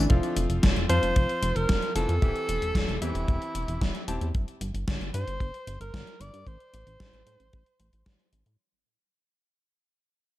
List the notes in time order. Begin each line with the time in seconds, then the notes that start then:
0.10 F1 F3 C4 F4 A4 F5, kick, closed hi-hat
0.23 closed hi-hat
0.36 F1, closed hi-hat
0.50 F1, closed hi-hat
0.63 F1, kick, snare, closed hi-hat
0.76 F1, closed hi-hat
0.89 F2 F3 C4 F4 C5 F5 A5, closed hi-hat
1.03 F1, closed hi-hat
1.16 F1, kick, closed hi-hat
1.29 closed hi-hat
1.42 F1, closed hi-hat
1.56 F1 A#4, closed hi-hat
1.69 F1, kick, snare, closed hi-hat
1.82 closed hi-hat
1.95 F1 E3 C4 F4 A4 A5, closed hi-hat
2.09 F2, closed hi-hat
2.22 E1 E3 C4 E4 G4 E5, kick, closed hi-hat
2.36 closed hi-hat
2.49 E1, closed hi-hat
2.62 E1, closed hi-hat
2.75 E1, kick, snare, closed hi-hat
2.88 E1, closed hi-hat
3.02 E2 E3 C4 E4 G4 E5, closed hi-hat
3.15 E1, closed hi-hat
3.28 E1, kick, closed hi-hat
3.42 closed hi-hat
3.55 E1, closed hi-hat
3.68 E1, closed hi-hat
3.81 E1, kick, snare, closed hi-hat
3.95 closed hi-hat
4.08 E1 C4 E4 G4 A5, closed hi-hat
4.21 E2, closed hi-hat
4.35 G1, kick, closed hi-hat
4.48 closed hi-hat
4.61 G1, closed hi-hat
4.74 G1, closed hi-hat
4.88 G1, kick, snare, closed hi-hat
5.01 G1, closed hi-hat
5.14 G2 C5, closed hi-hat
5.27 G1, closed hi-hat
5.40 G1, kick, closed hi-hat
5.54 closed hi-hat
5.67 G1, closed hi-hat
5.80 G1 A#4, closed hi-hat
5.94 G1, kick, snare, closed hi-hat
6.07 closed hi-hat
6.20 G1 D5, closed hi-hat
6.33 G2, closed hi-hat
6.46 A1 C5, kick, closed hi-hat
6.60 closed hi-hat
6.73 A1, closed hi-hat
6.87 A1, closed hi-hat
7.00 A1, kick, snare, closed hi-hat
7.13 A1, closed hi-hat
7.26 A2, closed hi-hat
7.40 A1, closed hi-hat
7.53 A1, kick, closed hi-hat
7.66 closed hi-hat
7.79 A1, closed hi-hat
7.93 A1, closed hi-hat
8.06 A1, kick, snare, closed hi-hat
8.20 closed hi-hat
8.33 A1, closed hi-hat
8.46 A2, closed hi-hat